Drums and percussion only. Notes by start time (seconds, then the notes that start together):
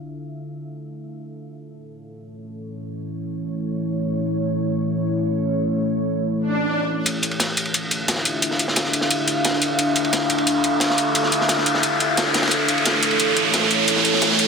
7.06 closed hi-hat, ride
7.23 closed hi-hat, ride
7.31 ride
7.40 snare, closed hi-hat, ride
7.57 closed hi-hat, ride
7.65 ride
7.74 closed hi-hat, ride
7.91 closed hi-hat, ride
8.08 snare, closed hi-hat, ride
8.16 snare
8.25 closed hi-hat, ride
8.42 closed hi-hat, ride
8.51 snare
8.59 closed hi-hat, ride
8.68 snare
8.76 snare, closed hi-hat, ride
8.84 snare
8.93 closed hi-hat, ride
9.01 snare
9.11 closed hi-hat, ride
9.27 closed hi-hat, ride
9.45 snare, closed hi-hat, ride
9.53 snare
9.62 closed hi-hat, ride
9.79 closed hi-hat, ride
9.96 closed hi-hat, ride
10.04 ride
10.13 snare, closed hi-hat, ride
10.30 closed hi-hat, ride
10.38 ride
10.47 closed hi-hat, ride
10.64 closed hi-hat, ride
10.80 snare, closed hi-hat, ride
10.90 snare
10.98 closed hi-hat, ride
11.15 closed hi-hat, ride
11.23 snare
11.32 closed hi-hat, ride
11.41 snare
11.49 snare, closed hi-hat, ride
11.58 snare
11.66 closed hi-hat, ride
11.74 snare
11.83 closed hi-hat, ride
12.00 closed hi-hat, ride
12.17 snare, closed hi-hat, ride
12.26 snare
12.34 snare, closed hi-hat, ride
12.42 snare, ride
12.47 snare, ride
12.51 closed hi-hat, ride
12.68 closed hi-hat, ride
12.78 ride
12.85 snare, closed hi-hat, ride
13.03 closed hi-hat, ride
13.11 ride
13.20 closed hi-hat, ride
13.36 closed hi-hat, ride
13.54 snare, closed hi-hat, ride
13.63 snare
13.71 closed hi-hat, ride
13.88 closed hi-hat, ride
13.96 snare
14.05 closed hi-hat, ride
14.14 snare
14.22 snare, closed hi-hat, ride
14.31 snare
14.39 closed hi-hat, ride